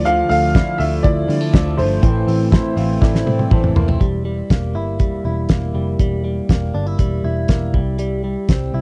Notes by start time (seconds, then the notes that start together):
Already playing: D2 D4 E4 F4 D5
0.04 D3 F3 A3 D4 F5, closed hi-hat
0.29 D2 A3 F5, open hi-hat
0.55 E4 F4 D5, kick, snare, closed hi-hat
0.78 D2 F3 A3 D4 E4 E5, open hi-hat
1.03 D2 E4 F4 D5, kick, closed hi-hat
1.28 D3 F3 G3 A3 D4 E4, open hi-hat
1.41 A3
1.53 D2 F3 A3 D4 E4 F4 D5 E5, kick, snare, closed hi-hat
1.77 G1 F3 A3 D4 E4 C5, open hi-hat
2.02 A1 A2 E3 A3 C4 E4 A4 C5, kick, closed hi-hat
2.27 A1 C4, open hi-hat
2.52 E4 A4 C5, kick, snare, closed hi-hat
2.77 A1 E3 A3 C4 E4 F5, open hi-hat
3.01 A1 E4 A4 D5 G5, kick, snare
3.15 snare
3.26 A2 E3 A3 C4 E4, high tom
3.39 high tom
3.50 A1 E3 A3 C4 E4 A4 C5 A5, kick, mid tom
3.64 mid tom
3.75 F1 E3 A3 A#3 C4 E4 C6, floor tom
3.88 C4, floor tom
4.00 E1 G3, kick, closed hi-hat
4.25 G3
4.50 E1 A#3, kick, snare, closed hi-hat
4.75 G1 E4
4.99 E1 G3, kick, closed hi-hat
5.25 E1 E4
5.49 E1 A#3, kick, snare, closed hi-hat
5.74 F1 G3
5.99 E1 G3, kick, closed hi-hat
6.25 G3
6.49 E1 A#3, kick, snare, closed hi-hat
6.74 G1 D4
6.87 E4
6.99 E1 G3, kick, closed hi-hat
7.24 E1 E4
7.48 E1 A#3, kick, snare, closed hi-hat
7.74 C2 G3, kick
7.99 G3, closed hi-hat
8.24 G3
8.49 C2 C4, kick, snare, closed hi-hat
8.74 C2 E4